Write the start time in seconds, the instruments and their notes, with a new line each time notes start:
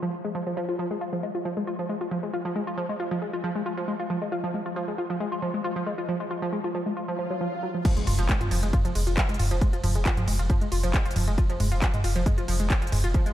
0.02 synth arpeggio sound F3
0.25 synth arpeggio sound G#3
0.35 synth arpeggio sound F3
0.47 synth arpeggio sound F3
0.57 synth arpeggio sound F3
0.69 synth arpeggio sound F4
0.79 synth arpeggio sound F3
0.91 synth arpeggio sound G#3
1.01 synth arpeggio sound F4
1.13 synth arpeggio sound F3
1.23 synth arpeggio sound G#3
1.35 synth arpeggio sound F4
1.45 synth arpeggio sound F3
1.57 synth arpeggio sound G#3
1.67 synth arpeggio sound F4
1.79 synth arpeggio sound F3
1.89 synth arpeggio sound G#3
2.01 synth arpeggio sound F4
2.11 synth arpeggio sound F3
2.23 synth arpeggio sound G#3
2.34 synth arpeggio sound F4
2.45 synth arpeggio sound F3
2.56 synth arpeggio sound G#3
2.67 synth arpeggio sound F4
2.78 synth arpeggio sound F3
2.89 synth arpeggio sound G#3
3.00 synth arpeggio sound F4
3.11 synth arpeggio sound F3
3.22 synth arpeggio sound G#3
3.33 synth arpeggio sound F4
3.44 synth arpeggio sound F3
3.55 synth arpeggio sound G#3
3.66 synth arpeggio sound F4
3.77 synth arpeggio sound F3
3.88 synth arpeggio sound G#3
4.00 synth arpeggio sound F4
4.10 synth arpeggio sound F3
4.22 synth arpeggio sound G#3
4.32 synth arpeggio sound F4
4.44 synth arpeggio sound F3
4.54 synth arpeggio sound G#3
4.66 synth arpeggio sound F4
4.76 synth arpeggio sound F3
4.88 synth arpeggio sound G#3
4.98 synth arpeggio sound F4
5.10 synth arpeggio sound F3
5.20 synth arpeggio sound G#3
5.32 synth arpeggio sound F4
5.42 synth arpeggio sound F3
5.54 synth arpeggio sound G#3
5.64 synth arpeggio sound F4
5.76 synth arpeggio sound F3
5.86 synth arpeggio sound G#3
5.98 synth arpeggio sound F4
6.09 synth arpeggio sound F3
6.20 synth arpeggio sound G#3
6.31 synth arpeggio sound F4
6.42 synth arpeggio sound F3
6.53 synth arpeggio sound G#3
6.64 synth arpeggio sound F4
6.75 synth arpeggio sound F3
6.86 synth arpeggio sound G#3
6.97 synth arpeggio sound F4, swell
7.08 synth arpeggio sound F3
7.19 synth arpeggio sound F3
7.30 synth arpeggio sound F#3
7.41 synth arpeggio sound F3
7.63 synth arpeggio sound F#3
7.75 synth arpeggio sound F3
7.85 synth arpeggio sound F3, kick, closed hi-hat, crash, impact
7.97 sub bass F1, synth arpeggio sound G#3, closed hi-hat
8.07 sub bass F1, synth arpeggio sound F4, mid tom, open hi-hat, ride
8.19 sub bass F1, synth arpeggio sound F3, closed hi-hat
8.29 synth arpeggio sound G#3, kick, clap, closed hi-hat
8.41 sub bass F1, synth arpeggio sound F4, closed hi-hat, mid tom
8.51 sub bass F1, synth arpeggio sound F3, open hi-hat, ride
8.63 sub bass F1, synth arpeggio sound G#3, closed hi-hat
8.73 synth arpeggio sound F4, kick, closed hi-hat, mid tom
8.85 sub bass F1, synth arpeggio sound F3, closed hi-hat
8.95 sub bass F1, synth arpeggio sound G#3, open hi-hat, ride
9.07 sub bass F1, synth arpeggio sound F4, closed hi-hat
9.17 synth arpeggio sound F3, kick, clap, closed hi-hat
9.29 sub bass F1, synth arpeggio sound G#3, closed hi-hat
9.34 closed hi-hat
9.39 sub bass F1, synth arpeggio sound F4, mid tom, open hi-hat, ride
9.51 sub bass F1, synth arpeggio sound F3, closed hi-hat
9.61 synth arpeggio sound G#3, kick, closed hi-hat
9.73 sub bass F1, synth arpeggio sound F4, closed hi-hat
9.84 sub bass F1, synth arpeggio sound F3, mid tom, open hi-hat, ride
9.95 sub bass F1, synth arpeggio sound G#3, closed hi-hat
10.06 synth arpeggio sound F4, kick, clap, closed hi-hat
10.17 sub bass F1, synth arpeggio sound F3, closed hi-hat, mid tom
10.28 sub bass F1, synth arpeggio sound G#3, open hi-hat, ride
10.39 sub bass F1, synth arpeggio sound F4, closed hi-hat
10.50 synth arpeggio sound F3, kick, closed hi-hat, mid tom
10.61 sub bass F1, synth arpeggio sound G#3, closed hi-hat
10.72 sub bass F1, synth arpeggio sound F4, open hi-hat, ride
10.83 sub bass F1, synth arpeggio sound F3, closed hi-hat
10.94 synth arpeggio sound G#3, kick, clap, closed hi-hat
11.05 sub bass F1, synth arpeggio sound F4, closed hi-hat
11.11 closed hi-hat
11.16 sub bass F1, synth arpeggio sound F3, mid tom, open hi-hat, ride
11.27 sub bass F1, synth arpeggio sound G#3, closed hi-hat
11.38 synth arpeggio sound F4, kick, closed hi-hat
11.50 sub bass F1, synth arpeggio sound F3, closed hi-hat
11.60 sub bass F1, synth arpeggio sound G#3, mid tom, open hi-hat, ride
11.72 sub bass F1, synth arpeggio sound F4, closed hi-hat
11.82 synth arpeggio sound F3, kick, clap, closed hi-hat
11.94 sub bass F1, synth arpeggio sound G#3, closed hi-hat, mid tom
12.04 sub bass F1, synth arpeggio sound F4, open hi-hat, ride
12.16 sub bass F1, synth arpeggio sound F3, closed hi-hat
12.26 synth arpeggio sound G#3, kick, closed hi-hat, mid tom
12.38 sub bass F1, synth arpeggio sound F4, closed hi-hat
12.48 sub bass F1, synth arpeggio sound F3, open hi-hat, ride
12.60 sub bass F1, synth arpeggio sound G#3, closed hi-hat
12.70 synth arpeggio sound F4, kick, clap, closed hi-hat
12.82 sub bass F1, synth arpeggio sound F3, closed hi-hat
12.87 closed hi-hat
12.92 sub bass F1, synth arpeggio sound G#3, mid tom, open hi-hat, ride
13.04 sub bass F1, synth arpeggio sound F4, closed hi-hat
13.14 synth arpeggio sound F3, kick, closed hi-hat
13.26 sub bass F1, synth arpeggio sound G#3, closed hi-hat